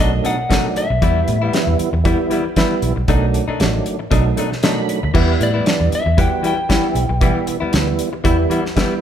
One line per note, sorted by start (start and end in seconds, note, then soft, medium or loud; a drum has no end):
0.00 0.19 B1 medium
0.00 0.13 B2 medium
0.00 0.35 D#3 medium
0.00 0.35 F#3 medium
0.00 0.12 A3 medium
0.00 0.35 A3 medium
0.00 0.12 D4 medium
0.00 0.36 D4 medium
0.00 0.11 D#4 medium
0.00 0.27 D#5 medium
0.13 muted clean electric guitar stroke soft
0.24 0.38 B2 medium
0.24 0.38 A3 medium
0.24 0.37 D4 medium
0.24 0.37 D#4 medium
0.24 0.79 F#5 medium
0.24 closed hi-hat medium
0.38 muted clean electric guitar stroke soft
0.49 0.67 B2 medium
0.49 0.86 D#3 medium
0.49 0.87 F#3 medium
0.49 0.67 A3 medium
0.49 0.87 A3 medium
0.49 0.67 D4 medium
0.49 0.87 D4 medium
0.49 0.68 D#4 medium
0.49 kick medium
0.49 snare loud
0.49 closed hi-hat medium
0.76 1.76 E5 medium
0.76 muted clean electric guitar stroke soft
0.76 closed hi-hat medium
0.90 1.00 B1 medium
0.90 muted clean electric guitar stroke soft
1.01 1.22 E2 medium
1.01 1.38 E3 medium
1.01 1.19 E3 medium
1.01 1.38 G3 medium
1.01 1.19 G3 medium
1.01 1.39 B3 medium
1.01 1.19 B3 medium
1.01 1.39 E4 medium
1.01 1.20 E4 medium
1.01 kick loud
1.01 closed hi-hat medium
1.28 1.48 A2 medium
1.28 muted clean electric guitar stroke soft
1.28 closed hi-hat medium
1.42 1.53 G3 soft
1.42 1.54 B3 medium
1.42 1.54 E4 medium
1.53 1.90 E3 medium
1.53 1.90 G3 medium
1.53 1.90 B3 medium
1.53 1.91 E4 medium
1.53 muted clean electric guitar stroke soft
1.53 snare loud
1.53 closed hi-hat medium
1.67 1.77 E2 medium
1.67 muted clean electric guitar stroke soft
1.79 muted fingered electric bass stroke soft
1.79 closed hi-hat medium
1.93 2.13 E2 medium
1.93 muted clean electric guitar stroke soft
2.04 2.41 E3 medium
2.04 2.19 E3 medium
2.04 2.41 G3 medium
2.04 2.19 G3 medium
2.04 2.42 B3 medium
2.04 2.18 B3 medium
2.04 2.42 E4 loud
2.04 2.18 E4 medium
2.04 kick loud
2.04 closed hi-hat medium
2.30 2.45 E3 medium
2.30 2.45 G3 medium
2.30 2.44 B3 medium
2.30 2.44 E4 medium
2.30 closed hi-hat medium
2.45 muted clean electric guitar stroke medium
2.56 2.93 E3 medium
2.56 2.73 E3 medium
2.56 2.93 G3 medium
2.56 2.74 G3 medium
2.56 2.93 B3 medium
2.56 2.74 B3 medium
2.56 2.94 E4 medium
2.56 2.74 E4 loud
2.56 kick medium
2.56 snare loud
2.56 closed hi-hat medium
2.82 2.93 B1 medium
2.82 muted clean electric guitar stroke soft
2.82 closed hi-hat medium
2.96 3.06 B1 medium
2.96 muted clean electric guitar stroke medium
3.08 3.38 B1 loud
3.08 3.25 B2 medium
3.08 3.44 D#3 medium
3.08 3.45 F#3 medium
3.08 3.45 A3 medium
3.08 3.25 A3 medium
3.08 3.45 D4 medium
3.08 3.25 D4 medium
3.08 3.26 D#4 medium
3.08 kick loud
3.08 closed hi-hat medium
3.34 muted clean electric guitar stroke soft
3.34 closed hi-hat medium
3.48 3.59 A3 soft
3.48 3.60 D4 medium
3.48 3.60 D#4 medium
3.48 muted fingered electric bass stroke soft
3.59 3.80 A1 medium
3.59 3.96 D#3 medium
3.59 3.96 F#3 medium
3.59 3.97 A3 medium
3.59 3.97 D4 medium
3.59 muted clean electric guitar stroke soft
3.59 snare loud
3.59 closed hi-hat medium
3.74 muted clean electric guitar stroke soft
3.86 closed hi-hat medium
3.99 muted clean electric guitar stroke soft
4.10 4.31 B1 medium
4.10 4.25 B2 medium
4.10 4.47 D#3 medium
4.10 4.47 F#3 medium
4.10 4.48 A3 medium
4.10 4.26 A3 medium
4.10 4.25 D4 medium
4.10 4.48 D#4 medium
4.10 4.24 D#4 medium
4.10 kick loud
4.10 closed hi-hat medium
4.26 muted clean electric guitar stroke medium
4.37 4.51 B2 medium
4.37 4.51 A3 medium
4.37 4.51 D4 medium
4.37 4.50 D#4 medium
4.37 closed hi-hat medium
4.51 muted clean electric guitar stroke medium
4.51 snare soft
4.63 4.80 B2 medium
4.63 4.99 D#3 medium
4.63 4.99 F#3 medium
4.63 5.00 A3 medium
4.63 4.80 A3 medium
4.63 5.00 D4 medium
4.63 4.80 D4 medium
4.63 4.80 D#4 medium
4.63 5.12 B5 medium
4.63 snare loud
4.63 closed hi-hat medium
4.89 muted clean electric guitar stroke soft
4.89 closed hi-hat medium
5.03 5.12 D2 medium
5.03 muted clean electric guitar stroke soft
5.14 5.34 E2 medium
5.14 5.31 E3 medium
5.14 5.51 E3 medium
5.14 5.51 G3 medium
5.14 5.31 G3 medium
5.14 5.51 B3 medium
5.14 5.31 B3 medium
5.14 5.32 E4 medium
5.14 5.52 E4 loud
5.14 kick loud
5.14 crash medium
5.40 5.60 A2 medium
5.40 5.92 D5 medium
5.40 muted clean electric guitar stroke soft
5.40 closed hi-hat medium
5.54 5.65 G3 soft
5.54 5.66 B3 soft
5.54 5.66 E4 medium
5.66 6.02 E3 medium
5.66 6.03 G3 medium
5.66 6.03 B3 medium
5.66 6.03 D4 medium
5.66 muted clean electric guitar stroke soft
5.66 snare loud
5.66 closed hi-hat medium
5.80 5.89 E2 medium
5.80 muted clean electric guitar stroke soft
5.92 6.19 E5 loud
5.92 muted fingered electric bass stroke soft
5.92 closed hi-hat medium
6.06 6.26 E2 medium
6.06 muted clean electric guitar stroke soft
6.17 6.54 E3 medium
6.17 6.32 E3 medium
6.17 6.54 G3 medium
6.17 6.31 G3 medium
6.17 6.54 B3 medium
6.17 6.31 B3 medium
6.17 6.30 E4 medium
6.17 6.54 F#4 medium
6.17 kick loud
6.17 closed hi-hat medium
6.21 6.45 G5 medium
6.31 muted clean electric guitar stroke soft
6.43 6.57 E3 medium
6.43 6.57 G3 medium
6.43 6.57 B3 medium
6.43 6.56 E4 medium
6.43 7.46 G5 medium
6.43 closed hi-hat medium
6.57 muted clean electric guitar stroke soft
6.69 7.05 E3 medium
6.69 6.86 E3 medium
6.69 7.06 G3 medium
6.69 6.86 G3 medium
6.69 7.06 B3 medium
6.69 6.86 B3 medium
6.69 7.06 E4 medium
6.69 6.87 E4 medium
6.69 kick medium
6.69 snare loud
6.69 closed hi-hat medium
6.95 7.06 B1 medium
6.95 muted clean electric guitar stroke soft
6.95 closed hi-hat medium
7.09 7.29 B1 medium
7.09 muted clean electric guitar stroke medium
7.20 7.57 E3 medium
7.20 7.38 E3 medium
7.20 7.57 G3 medium
7.20 7.38 G3 medium
7.20 7.58 B3 medium
7.20 7.38 B3 medium
7.20 7.58 E4 medium
7.20 7.39 E4 loud
7.20 kick loud
7.20 closed hi-hat medium
7.47 muted clean electric guitar stroke soft
7.47 closed hi-hat medium
7.60 7.73 G3 soft
7.60 7.73 B3 medium
7.60 7.73 E4 medium
7.60 muted fingered electric bass stroke soft
7.73 7.93 D2 medium
7.73 8.09 E3 medium
7.73 8.09 G3 medium
7.73 8.10 B3 medium
7.73 8.10 E4 medium
7.73 muted clean electric guitar stroke soft
7.73 snare loud
7.73 closed hi-hat medium
7.87 muted clean electric guitar stroke soft
7.99 closed hi-hat medium
8.13 muted clean electric guitar stroke soft
8.24 8.44 E2 medium
8.24 8.61 E3 medium
8.24 8.38 E3 medium
8.24 8.61 G3 medium
8.24 8.38 G3 medium
8.24 8.61 B3 medium
8.24 8.38 B3 loud
8.24 8.61 E4 medium
8.24 8.37 E4 loud
8.24 kick loud
8.24 closed hi-hat medium
8.38 muted clean electric guitar stroke medium
8.50 8.64 E3 medium
8.50 8.65 G3 medium
8.50 8.64 B3 medium
8.50 8.64 E4 medium
8.50 closed hi-hat medium
8.65 muted clean electric guitar stroke soft
8.65 snare soft
8.76 9.01 E3 medium
8.76 8.93 E3 medium
8.76 9.01 G3 medium
8.76 8.93 G3 medium
8.76 9.01 B3 medium
8.76 8.93 B3 medium
8.76 9.01 E4 loud
8.76 8.94 E4 medium
8.76 kick medium
8.76 snare loud
8.76 closed hi-hat medium